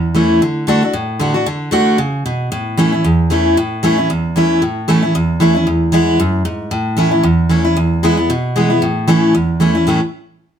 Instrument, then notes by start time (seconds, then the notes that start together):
steel-string acoustic guitar
Already playing: E2
0.14 E3 A3 C#4 E4
0.42 D3
0.67 D3 A3 D4 F#4
0.83 D4 F#4
0.93 A2
1.19 D3 A3 D4 F#4
1.34 D4 F#4
1.46 D3
1.71 D3 A3 D4 F#4
1.98 C#3
2.26 B2
2.52 A2
2.77 E3 A3 C#4 E4
2.92 C#4 E4
3.04 E2
3.30 E3 A3 C#4 E4
3.57 A2
3.83 E3 A3 C#4 E4
3.98 C#4 E4
4.10 E2
4.36 E3 A3 C#4 E4
4.62 A2
4.88 E3 A3 C#4 E4
5.03 C#4 E4
5.15 E2
5.40 E3 A3 C#4 E4
5.54 C#4 E4
5.67 E2
5.92 E3 G#3 B3 E4
6.20 F#2
6.45 G#2
6.71 A2
6.97 E3 A3 C#4 E4
7.11 C#4 E4
7.23 E2
7.49 E3 A3 C#4 E4
7.65 C#4 E4
7.77 E2
8.03 E3 G#3 B3 E4
8.17 B3 E4
8.30 B2
8.56 E3 G#3 B3 E4
8.70 B3 E4
8.82 A2
9.08 E3 A3 C#4 E4
9.35 E2
9.60 E3 A3 C#4 E4
9.75 C#4 E4
9.87 A2 E3 A3 C#4 E4